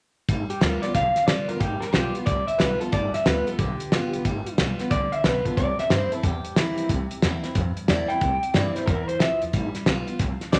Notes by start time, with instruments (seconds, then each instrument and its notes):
0.29 upright bass G1, steel-string acoustic guitar G3, kick, closed hi-hat
0.50 clean electric guitar G4, muted upright bass stroke, closed hi-hat
0.61 upright bass D2, steel-string acoustic guitar G3 B3 F4, clean electric guitar A#4, snare, closed hi-hat
0.82 steel-string acoustic guitar B3 F4, clean electric guitar D5, muted upright bass stroke, snare, closed hi-hat
0.95 upright bass B1, steel-string acoustic guitar D3, clean electric guitar F5, kick, snare, closed hi-hat
1.16 muted upright bass stroke, snare, closed hi-hat
1.27 upright bass G1, steel-string acoustic guitar G3 B3 F4, clean electric guitar D5, snare, closed hi-hat
1.48 upright bass B1, steel-string acoustic guitar B3 F4, clean electric guitar A#4, closed hi-hat
1.60 upright bass G1, steel-string acoustic guitar G3, clean electric guitar G4, kick, closed hi-hat
1.80 clean electric guitar A#4, muted upright bass stroke, snare, closed hi-hat
1.93 upright bass B1, steel-string acoustic guitar G3 B3 F4, clean electric guitar G4, snare, closed hi-hat
2.14 steel-string acoustic guitar B3 F4, muted upright bass stroke, closed hi-hat
2.26 upright bass C2, steel-string acoustic guitar D3, clean electric guitar D5, kick, snare, closed hi-hat
2.47 clean electric guitar E5, muted upright bass stroke, closed hi-hat
2.58 upright bass B1, steel-string acoustic guitar G3 B3 F4, clean electric guitar B4, snare, closed hi-hat
2.80 steel-string acoustic guitar B3 F4, clean electric guitar A4, muted upright bass stroke, closed hi-hat
2.92 upright bass G1, steel-string acoustic guitar G3, clean electric guitar D5, kick, closed hi-hat
3.14 clean electric guitar E5, muted upright bass stroke, snare, closed hi-hat
3.25 upright bass D2, steel-string acoustic guitar G3 B3 F4, clean electric guitar B4, snare, closed hi-hat
3.47 steel-string acoustic guitar B3 F4, clean electric guitar A4, muted upright bass stroke, closed hi-hat
3.59 upright bass B1, steel-string acoustic guitar D3, clean electric guitar G4, kick, closed hi-hat
3.80 closed hi-hat
3.92 upright bass G1, steel-string acoustic guitar G3 B3 F4, snare, closed hi-hat
4.13 upright bass B1, steel-string acoustic guitar B3 F4, closed hi-hat
4.25 upright bass G1, steel-string acoustic guitar G3, kick, closed hi-hat
4.46 muted upright bass stroke, closed hi-hat
4.58 upright bass B1, steel-string acoustic guitar G3 B3 F4, snare, closed hi-hat
4.79 steel-string acoustic guitar B3 F4, muted upright bass stroke, snare, closed hi-hat
4.91 upright bass C2, steel-string acoustic guitar D3, clean electric guitar D5, kick, snare, closed hi-hat
5.12 clean electric guitar E5, muted upright bass stroke, closed hi-hat
5.24 upright bass B1, steel-string acoustic guitar G3 B3 F4, clean electric guitar B4, snare, closed hi-hat
5.45 steel-string acoustic guitar B3 F4, clean electric guitar A4, muted upright bass stroke, kick, closed hi-hat
5.57 upright bass C2, steel-string acoustic guitar C3, clean electric guitar D5, kick, closed hi-hat
5.79 clean electric guitar E5, muted upright bass stroke, snare, closed hi-hat
5.90 upright bass G2, steel-string acoustic guitar E3 A#3 C4 E4, clean electric guitar C5, snare, closed hi-hat
6.11 steel-string acoustic guitar C4 E4, clean electric guitar A4, closed hi-hat
6.23 upright bass E2, steel-string acoustic guitar G2, clean electric guitar G4, kick, closed hi-hat
6.45 muted upright bass stroke, closed hi-hat
6.56 upright bass C2, steel-string acoustic guitar E3 A#3 C4 E4, snare, closed hi-hat
6.78 upright bass E2, closed hi-hat
6.89 upright bass C2, steel-string acoustic guitar C3, kick, closed hi-hat
7.11 muted upright bass stroke, closed hi-hat
7.22 upright bass E2, steel-string acoustic guitar E3 A#3 C4 E4, snare, closed hi-hat
7.43 steel-string acoustic guitar C4 E4, muted upright bass stroke, snare, closed hi-hat
7.55 upright bass F2, steel-string acoustic guitar G2, kick, snare, closed hi-hat
7.77 muted upright bass stroke, closed hi-hat
7.88 upright bass E2, steel-string acoustic guitar E3 A#3 C4 E4, clean electric guitar D5, snare, closed hi-hat
8.08 steel-string acoustic guitar C4 E4, clean electric guitar G5, muted upright bass stroke, closed hi-hat
8.21 upright bass C2, steel-string acoustic guitar C3, kick, closed hi-hat
8.43 closed hi-hat
8.54 upright bass G2, steel-string acoustic guitar E3 A#3 C4 E4, clean electric guitar D5, snare, closed hi-hat
8.75 steel-string acoustic guitar C4 E4, clean electric guitar C5, snare, closed hi-hat
8.86 upright bass E2, steel-string acoustic guitar E3, clean electric guitar A#4, kick, closed hi-hat
9.08 clean electric guitar C5, muted upright bass stroke, closed hi-hat
9.20 upright bass C2, steel-string acoustic guitar F3, clean electric guitar E5, snare, closed hi-hat
9.42 upright bass E2, closed hi-hat
9.53 upright bass G1, steel-string acoustic guitar G3, kick, closed hi-hat
9.75 muted upright bass stroke, snare, closed hi-hat
9.86 upright bass B1, steel-string acoustic guitar G3 B3 F4, snare, closed hi-hat
10.07 steel-string acoustic guitar B3 F4, muted upright bass stroke, closed hi-hat
10.19 upright bass C2, steel-string acoustic guitar F3, kick, snare, closed hi-hat
10.41 snare, closed hi-hat
10.52 upright bass B1, steel-string acoustic guitar C3, clean electric guitar D5, snare, closed hi-hat